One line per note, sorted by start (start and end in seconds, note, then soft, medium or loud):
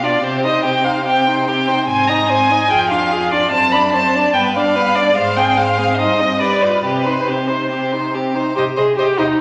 0.00 0.24 B2 soft
0.00 0.23 D4 soft
0.00 0.22 F4 soft
0.04 0.25 D5 medium
0.23 1.88 C3 medium
0.23 0.46 C4 soft
0.23 0.46 G4 soft
0.23 0.44 C5 medium
0.44 0.66 D#4 soft
0.44 0.65 C5 soft
0.44 0.63 D#5 medium
0.63 0.87 C4 soft
0.63 0.85 G4 soft
0.63 0.86 G5 medium
0.84 1.05 D#4 soft
0.84 1.05 C5 soft
0.84 1.05 F5 medium
1.05 1.29 C4 soft
1.05 1.28 G4 soft
1.05 1.46 G5 medium
1.27 1.49 D#4 soft
1.27 1.49 C5 soft
1.47 1.69 C4 soft
1.47 1.69 G4 medium
1.47 1.87 G5 medium
1.67 1.88 D#4 soft
1.67 1.88 C5 soft
1.87 2.69 G#2 medium
1.87 2.10 C4 soft
1.87 2.10 C5 soft
1.87 2.09 G#5 medium
2.08 2.30 D#4 soft
2.08 2.31 D#5 soft
2.08 2.29 A#5 medium
2.29 2.52 C4 soft
2.29 2.53 C5 soft
2.29 2.71 G#5 medium
2.50 2.69 D#4 soft
2.50 2.69 D#5 medium
2.70 3.50 F2 medium
2.70 2.93 F4 soft
2.70 2.91 G#4 soft
2.70 2.90 G5 medium
2.90 3.13 D4 soft
2.90 3.13 F4 medium
2.90 3.31 F5 medium
3.11 3.34 F4 soft
3.11 3.33 G#4 soft
3.31 3.52 D4 soft
3.31 3.52 F4 medium
3.31 3.50 D5 medium
3.51 4.32 F#2 medium
3.51 3.76 C4 medium
3.51 3.74 C5 medium
3.51 3.74 A5 medium
3.72 3.96 D4 soft
3.72 3.95 D5 soft
3.72 3.92 B5 medium
3.92 4.17 C4 soft
3.92 4.16 C5 soft
3.92 4.33 A5 medium
4.15 4.35 D4 soft
4.15 4.35 D5 soft
4.34 5.18 G2 medium
4.34 4.58 B3 medium
4.34 4.58 B4 soft
4.34 4.42 G5 medium
4.55 4.78 D4 soft
4.55 4.77 D5 medium
4.55 4.97 F5 medium
4.75 4.96 B3 soft
4.75 4.98 B4 soft
4.95 5.15 D4 medium
4.95 5.17 D5 medium
4.95 5.16 D5 soft
5.16 6.00 G#2 medium
5.16 5.38 G#3 medium
5.16 5.39 C5 medium
5.16 5.38 F5 medium
5.37 5.58 C4 soft
5.37 5.60 G#4 soft
5.37 5.59 G5 medium
5.57 5.80 G#3 soft
5.57 5.79 C5 soft
5.57 5.90 F5 medium
5.78 5.99 C4 soft
5.78 5.98 G#4 soft
5.91 5.99 F5 medium
5.98 6.83 G2 medium
5.98 6.23 D#4 soft
5.98 6.21 C5 soft
5.98 6.42 D#5 medium
6.20 6.42 C4 soft
6.20 6.40 D#5 soft
6.40 6.65 G4 soft
6.40 6.63 B4 soft
6.40 6.65 D5 medium
6.62 6.85 F4 soft
6.62 6.84 B4 medium
6.62 6.83 D5 soft
6.84 8.34 C3 soft
6.84 7.08 C4 soft
6.84 7.07 G4 soft
6.84 7.31 B4 medium
7.05 7.30 D#4 soft
7.05 7.29 C5 soft
7.27 7.51 C4 soft
7.27 7.49 G4 soft
7.27 8.15 C5 soft
7.48 7.71 D#4 soft
7.48 7.69 C5 soft
7.70 7.95 C4 soft
7.70 7.94 G4 soft
7.92 8.16 D#4 soft
7.92 8.16 C5 soft
8.14 8.37 C4 soft
8.14 8.37 G4 soft
8.35 8.55 D#4 soft
8.35 8.55 C5 soft
8.55 8.65 C3 medium
8.55 8.63 G4 medium
8.55 8.64 C5 soft
8.55 8.65 D#5 soft
8.76 8.86 C3 soft
8.76 8.98 G#4 medium
8.76 8.84 C5 soft
8.76 8.85 D#5 soft
8.98 9.06 C3 medium
8.98 9.20 G4 medium
8.98 9.06 C5 soft
8.98 9.07 D#5 soft
9.18 9.28 C3 medium
9.18 9.41 D#4 medium
9.18 9.26 C5 soft
9.18 9.27 D#5 soft